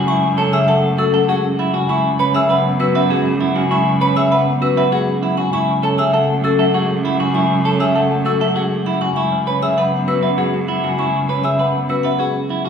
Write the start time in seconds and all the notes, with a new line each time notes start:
Already playing: F#2 C#3
0.08 G#3 E4 G#5 C#6
0.24 C#3
0.38 C#4 A4 C#5 A5
0.53 C#3 G#4 E5 E6
0.68 F#3 A4 F#5 A5
0.83 A3
0.98 C#4 F#4 A4 E6
1.13 F#3 A4 F#5
1.29 G#3 F#4 G#4 F#5
1.44 C#4
1.59 F#3 E4 F#5
1.74 C#3 F#4 G#5
1.89 F#2 G#3 E4 G#5 C#6
2.05 C#3
2.19 C#4 B4 C#5 B5
2.34 C#3 G#4 E5 E6
2.49 F#3 B4 F#5 B5
2.65 B3
2.80 C#4 F#4 B4 E6
2.95 F#3 B4 E5 F#5
3.10 G#3 F#4 G#4 F#5
3.26 C#4
3.41 F#3 E4 F#5
3.56 C#3 F#4 G#5
3.71 G#3 E4 G#5 C#6
3.87 C#3
4.01 C#4 B4 C#5 B5
4.16 C#3 G#4 E5 E6
4.31 F#3 B4 F#5 B5
4.47 B3
4.62 C#4 F#4 B4 E6
4.77 F#3 B4 E5 F#5
4.92 G#3 F#4 G#4 F#5
5.08 C#4
5.23 F#3 E4 F#5
5.37 C#3 F#4 G#5
5.53 F#2 G#3 E4 G#5 C#6
5.69 C#3
5.83 C#4 A4 C#5 A5
5.98 C#3 G#4 E5 E6
6.13 F#3 A4 F#5 A5
6.29 A3
6.44 C#4 F#4 A4 E6
6.59 F#3 A4 E5 F#5
6.74 G#3 F#4 G#4 F#5
6.90 C#4
7.05 F#3 E4 F#5
7.20 C#3 F#4 G#5
7.34 G#3 E4 G#5 C#6
7.50 C#3
7.65 C#4 A4 C#5 A5
7.80 C#3 G#4 E5 E6
7.95 F#3 A4 F#5 A5
8.11 A3
8.25 C#4 F#4 A4 E6
8.41 F#3 A4 E5 F#5
8.56 G#3 F#4 G#4 F#5
8.72 C#4
8.86 F#3 E4 F#5
9.01 C#3 F#4 G#5
9.16 F#2 G#3 E4 G#5 C#6
9.32 C#3
9.47 C#4 B4 C#5 B5
9.62 C#3 G#4 E5 E6
9.77 F#3 B4 F#5 B5
9.93 B3
10.08 C#4 F#4 B4 E6
10.23 F#3 B4 E5 F#5
10.38 G#3 F#4 G#4 F#5
10.53 C#4
10.68 F#3 E4 F#5
10.84 C#3 F#4 G#5
10.99 G#3 E4 G#5 C#6
11.14 C#3
11.29 C#4 B4 C#5 B5
11.44 C#3 G#4 E5 E6
11.59 F#3 B4 F#5 B5
11.75 B3
11.89 C#4 F#4 B4 E6
12.03 F#3 B4 E5 F#5
12.19 G#3 F#4 G#4 F#5
12.35 C#4
12.50 F#3 E4 F#5
12.65 C#3 F#4 G#5